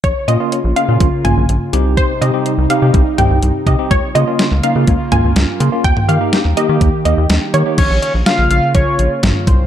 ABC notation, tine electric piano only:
X:1
M:4/4
L:1/16
Q:1/4=124
K:Bbdor
V:1 name="Tine electric piano"
z2 [B,DF] [B,DF]2 z [B,DF] [B,DF]2 z [B,DF]2 z2 [CEG]2- | [CEG] z [CEG] [CEG]2 z [CEG] [CEG]2 z [CEG]2 z2 [CEG] [CEG] | z2 [B,DF] [B,DF]2 z [B,DE] [B,DF]2 z [B,DF]2 z2 [B,DF] [B,DF] | z2 [B,EG] [B,EG]2 z [B,EG] [B,EG]2 z [B,EG]2 z2 [B,EG] [B,EG] |
z16 |]